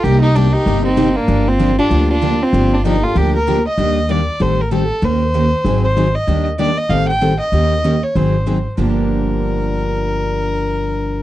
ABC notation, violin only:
X:1
M:4/4
L:1/8
Q:"Swing" 1/4=192
K:Gm
V:1 name="Violin"
G E D E2 C2 B,- | B, C2 D2 D2 C- | C D E F G B2 e- | e2 d2 c B A2 |
c4- c c2 e- | e z d e f g2 e- | e3 _d c3 z | B8- |
B8 |]